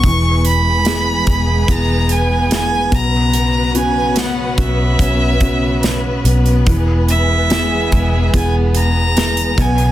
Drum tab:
HH |x-x-x-x-x-x-x-x-|x-x-x-x-x-x-x-xx|x-x-x-x-x-x-xxxx|
SD |----o-------o---|----o-------o---|----o-------o---|
BD |o-----o-o-----o-|------o-o-o-----|o-----o-o-----o-|